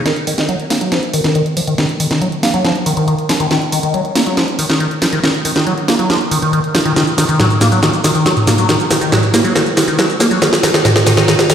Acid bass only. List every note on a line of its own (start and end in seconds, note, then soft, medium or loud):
0.05 0.12 D#3 medium
0.27 0.34 D#3 medium
0.38 0.48 D#3 medium
0.49 0.56 F#3 medium
0.70 0.77 A#3 medium
0.81 0.91 F#3 medium
0.92 0.99 F3 medium
1.14 1.20 D#3 medium
1.24 1.35 D#3 medium
1.35 1.42 D#3 medium
1.57 1.61 F3 medium
1.67 1.74 D#3 loud
1.78 1.85 D#3 medium
2.00 2.07 D#3 medium
2.11 2.21 D#3 medium
2.21 2.28 F#3 medium
2.43 2.50 A#3 medium
2.54 2.64 F#3 medium
2.64 2.71 F3 medium
2.86 2.93 D#3 medium
2.97 3.07 D#3 medium
3.08 3.15 D#3 medium
3.29 3.33 F3 medium
3.40 3.47 D#3 loud
3.51 3.58 D#3 medium
3.72 3.79 D#3 medium
3.83 3.94 D#3 medium
3.94 4.01 F#3 medium
4.16 4.23 A#3 medium
4.26 4.37 F#3 medium
4.37 4.44 F3 medium
4.59 4.66 D#3 medium
4.70 4.80 D#3 medium
4.80 4.87 D#3 medium
5.02 5.06 F3 medium
5.13 5.20 D#3 loud
5.23 5.30 D#3 medium
5.45 5.52 D#3 medium
5.56 5.66 D#3 medium
5.67 5.74 F#3 medium
5.88 5.95 A#3 medium
5.99 6.09 F#3 medium
6.10 6.17 F3 medium
6.31 6.38 D#3 medium
6.42 6.52 D#3 medium
6.53 6.60 D#3 medium
6.75 6.79 F3 medium
6.85 6.92 D#3 loud
6.96 7.03 D#3 medium
7.18 7.25 D#3 medium
7.29 7.39 D#3 medium
7.39 7.46 F#3 medium
7.61 7.68 A#3 medium
7.72 7.81 F#3 medium
7.83 7.90 D#3 medium
8.04 8.11 D#3 medium
8.15 8.25 D#3 medium
8.26 8.33 F#3 medium
8.47 8.54 A#3 medium
8.58 8.67 F#3 medium
8.69 8.76 D#3 medium
8.90 8.97 D#3 medium
9.01 9.12 D#3 medium
9.12 9.19 F#3 medium
9.34 9.41 A#3 medium
9.44 9.54 F#3 medium
9.55 9.62 D#3 medium
9.77 9.84 D#3 medium
9.88 9.98 D#3 medium
9.98 10.05 F#3 medium
10.20 10.27 A#3 medium
10.31 10.40 F#3 medium
10.42 10.49 D#3 medium
10.63 10.70 D#3 medium
10.74 10.83 D#3 medium
10.85 10.92 D#3 medium
11.06 11.13 D#3 medium
11.17 11.26 D#3 medium
11.28 11.35 D#3 medium
11.49 11.54 D#3 medium